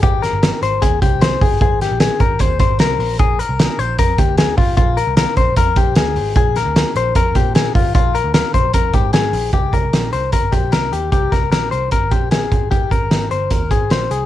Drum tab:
HH |xxxxxxxo|xxxxxxxo|xxxxxxxo|xxxxxxxo|
SD |-oo---o-|-oo---o-|--o---o-|--o---o-|
BD |o---oo-o|o--ooo--|o---oo-o|o--ooo--|

HH |xxxxxxxo|xxxxxxxo|xxxxxxxx|xxxxxxxx|
SD |-oo---o-|--o---o-|--o---o-|-oo---o-|
BD |o---oo-o|o--ooo--|oo--oo--|oo--oo-o|

HH |xxxxxxxx|
SD |--o---o-|
BD |oo--oo--|